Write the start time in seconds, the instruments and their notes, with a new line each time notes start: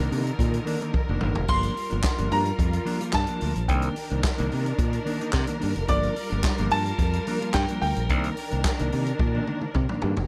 Already playing: string section D3 D#3 A#4, clean electric guitar D4
0.00 clean electric guitar A#3
0.11 fingered electric bass C3, clean electric guitar D#3 A#3 D4, open hi-hat
0.25 muted clean electric guitar stroke, closed hi-hat
0.39 fingered electric bass A#2, muted clean electric guitar stroke, kick, closed hi-hat
0.54 muted clean electric guitar stroke, closed hi-hat
0.65 clean electric guitar D#3 A#3 D4, open hi-hat
0.82 clean electric guitar D#3 A#3 D#4, closed hi-hat
0.93 muted clean electric guitar stroke, kick, high tom
1.09 fingered electric bass F1, clean electric guitar D#3 A#3 D4
1.21 fingered electric bass G1, clean electric guitar D#3 A#3 D4, mid tom
1.35 fingered electric bass F1, muted clean electric guitar stroke, floor tom
1.48 fingered electric bass G1, clean electric guitar F3 A#3 D4, string section G3 F4, grand piano C6, kick, splash
1.63 closed hi-hat
1.76 muted clean electric guitar stroke, open hi-hat
1.90 fingered electric bass G1, clean electric guitar F3 A#3 D4, closed hi-hat
2.03 muted clean electric guitar stroke, kick, snare, clap, closed hi-hat
2.18 fingered electric bass G1, clean electric guitar F3 A#3 D4, closed hi-hat
2.31 fingered electric bass G2, clean electric guitar F3 A#3 D4, grand piano A#5, open hi-hat
2.45 muted clean electric guitar stroke, closed hi-hat
2.58 fingered electric bass F2, muted clean electric guitar stroke, kick, closed hi-hat
2.73 muted clean electric guitar stroke, closed hi-hat
2.85 clean electric guitar F3 A#3 D4, open hi-hat
3.00 clean electric guitar F3 A#3 F4, closed hi-hat
3.12 fingered electric bass G2, grand piano A5, kick, snare, clap, closed hi-hat
3.27 clean electric guitar F3 A#3 D4, closed hi-hat
3.41 fingered electric bass D2, clean electric guitar F3 A#3 D4, open hi-hat
3.55 fingered electric bass A#1, muted clean electric guitar stroke, closed hi-hat
3.67 fingered electric bass C2, string section D#3 D4 A#4, clean electric guitar D#3 A#3 D4, grand piano G5, kick, closed hi-hat
3.82 closed hi-hat
3.96 muted clean electric guitar stroke, open hi-hat
4.10 fingered electric bass C2, clean electric guitar D#3 A#3 D4, closed hi-hat
4.24 kick, snare, clap, closed hi-hat
4.38 fingered electric bass C2, clean electric guitar D#3 A#3 D4, closed hi-hat
4.51 fingered electric bass C3, clean electric guitar D#3 A#3 D4, open hi-hat
4.65 muted clean electric guitar stroke, closed hi-hat
4.78 fingered electric bass A#2, muted clean electric guitar stroke, kick, closed hi-hat
4.93 muted clean electric guitar stroke, closed hi-hat
5.05 clean electric guitar D#3 A#3 D4, open hi-hat
5.21 clean electric guitar D#3 A#3 D#4, closed hi-hat
5.32 fingered electric bass C3, kick, snare, clap, closed hi-hat
5.47 clean electric guitar D#3 A#3 D4, closed hi-hat
5.59 clean electric guitar D#3 A#3 D4, open hi-hat
5.63 fingered electric bass G2
5.75 fingered electric bass F1, muted clean electric guitar stroke, closed hi-hat
5.87 fingered electric bass G1, clean electric guitar F3 A#3 D4, string section G3 F4, grand piano D5, kick, closed hi-hat
6.03 closed hi-hat
6.16 muted clean electric guitar stroke, open hi-hat
6.30 fingered electric bass G1, clean electric guitar F3 A#3 D4, closed hi-hat
6.44 kick, snare, clap, closed hi-hat
6.58 fingered electric bass G1, clean electric guitar F3 A#3 D4, closed hi-hat
6.71 fingered electric bass G2, clean electric guitar F3, grand piano A5, open hi-hat
6.86 muted clean electric guitar stroke, closed hi-hat
6.99 fingered electric bass F2, muted clean electric guitar stroke, kick, closed hi-hat
7.13 muted clean electric guitar stroke, closed hi-hat
7.27 clean electric guitar F3 A#3 D4, open hi-hat
7.42 clean electric guitar F3 A#3 F4, closed hi-hat
7.53 fingered electric bass G2, grand piano G5, kick, snare, clap, closed hi-hat
7.68 clean electric guitar F3 A#3 D4, closed hi-hat
7.82 fingered electric bass D2, grand piano G5, open hi-hat
7.96 fingered electric bass A#1, muted clean electric guitar stroke, closed hi-hat
8.09 fingered electric bass C2, string section D#3 D4, clean electric guitar D#3 A#3 D4, kick, closed hi-hat
8.24 closed hi-hat
8.37 muted clean electric guitar stroke, open hi-hat
8.51 fingered electric bass C2, clean electric guitar D#3 A#3 D4, closed hi-hat
8.64 kick, snare, clap, closed hi-hat
8.79 fingered electric bass C2, clean electric guitar D#3 A#3 D4, closed hi-hat
8.92 fingered electric bass C3, clean electric guitar D#3 A#3 D4, open hi-hat
9.06 muted clean electric guitar stroke, closed hi-hat
9.19 fingered electric bass A#2, kick, high tom
9.35 clean electric guitar D#3 A#3 D4, high tom
9.47 clean electric guitar D#3 A#3 D4, mid tom
9.61 muted clean electric guitar stroke, mid tom
9.74 fingered electric bass C3, muted clean electric guitar stroke, kick, mid tom
9.89 clean electric guitar D#3 A#3 D4, mid tom
10.02 fingered electric bass G2, clean electric guitar D#3 A#3 D4, floor tom
10.17 fingered electric bass F1, muted clean electric guitar stroke, floor tom